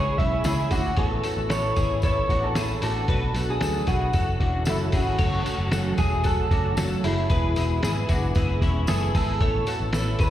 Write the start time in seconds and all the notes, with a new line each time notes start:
Already playing: C#2 E3 G#3 C#4 E4 G#4 C#5
0.18 B1 G#3 C#4 E4 G#4 E5, kick, open hi-hat
0.44 C#2 C#3 E3 G#3 C#4 E4 G#4, snare, open hi-hat, tambourine
0.71 D2 G#3 C#4 D4 E4 F#4 G#4, kick, open hi-hat, tambourine
0.97 A1 A3 B3 C#4 E4 A4 C#5, kick, open hi-hat
1.23 B3 C#4 E4 F#4 A4 C#5, open hi-hat, tambourine
1.37 A1
1.49 A3 B3 C#4 E4 A4 C#5, snare, open hi-hat, tambourine
1.76 G#1 B3 C#4 E4 G#4 A4 C#5, kick, open hi-hat, tambourine
1.80 E4
2.02 B3 C#4 E4 A4 C#5, kick, open hi-hat, tambourine
2.28 A1 B3 C#4 D4 E4 F#4 A4 C#5, kick, open hi-hat, tambourine
2.44 A4
2.55 A3 B3 C#4 E4 G#4 A4 C#5, snare, open hi-hat, tambourine
2.81 A1 B3 C#4 D4 E4 F#4 A4 C#5, open hi-hat, tambourine
3.07 B1 B2 F#3 A3 B3 D4 F#4 A4 B4, kick, open hi-hat
3.34 B1 B3 D4 F#4 A4, open hi-hat, tambourine
3.38 A3
3.50 G#4
3.61 D2 B2 F#3 A3 B3 D4 F#4 A4, snare, open hi-hat, tambourine
3.87 B1 B3 D4 E4 F#4 G#4 A4, kick, open hi-hat, tambourine
3.91 A3
4.12 F#1 E3 A3 C#4 E4 F#4 A4, kick, open hi-hat, tambourine
4.39 E1 A3 C#4 D4 E4 F#4 A4, kick, open hi-hat
4.43 E3
4.65 F#1 F#2 C#3 E3 A3 C#4 E4 F#4 A4, snare, open hi-hat, tambourine
4.69 E4
4.92 G#1 A3 C#4 E4 F#4 G#4 A4, kick, open hi-hat, tambourine
4.96 E3
5.18 F#1 F#2 C#3 F#3 A3 C#4 F#4 A4 C#5, kick, open hi-hat, crash, tambourine
5.45 F#3 A3 C#4 F#4 A4, open hi-hat, tambourine
5.58 F#1
5.70 F#2 C#3 F#3 A3 C#4 F#4 A4, snare, open hi-hat, tambourine
5.97 E1 F#3 A3 C#4 E4 F#4 G#4 A4, kick, open hi-hat, tambourine
6.24 F#3 A3 C#4 F#4 A4, kick, open hi-hat, tambourine
6.51 F#1 F#3 A3 C#4 D4 F#4 A4, kick, open hi-hat, tambourine
6.77 F#2 C#3 F#3 A3 C#4 F#4 A4, snare, open hi-hat, tambourine
7.03 F#1 F#3 A3 C#4 E4 F#4 G#4 A4, open hi-hat, tambourine
7.29 E1 E3 G#3 B3 E4 G#4 B4, kick, open hi-hat, tambourine
7.56 E1 G#3 B3 E4 F#4 G#4, open hi-hat, tambourine
7.82 G#1 E3 G#3 B3 E4 G#4, snare, open hi-hat, tambourine
8.09 F#1 G#3 B3 D4 E4 F#4 G#4, kick, open hi-hat, tambourine
8.35 F#1 E3 G#3 B3 E4 G#4 B4, kick, open hi-hat, tambourine
8.39 E4
8.62 E1 G#3 B3 C#4 E4 G#4, kick, open hi-hat, tambourine
8.87 F#1 E3 G#3 B3 E4 G#4 A4, snare, open hi-hat, tambourine
9.15 G#1 G#3 B3 E4 G#4 A4, kick, open hi-hat, tambourine
9.40 A1 A3 B3 C#4 E4 A4 C#5, kick, open hi-hat
9.66 B3 C#4 E4 F#4 A4 C#5, open hi-hat, tambourine
9.80 A1
9.92 A3 B3 C#4 E4 A4 C#5, snare, open hi-hat, tambourine
10.18 G#1 B3 C#4 E4 G#4 A4 B4 C#5, kick, open hi-hat, tambourine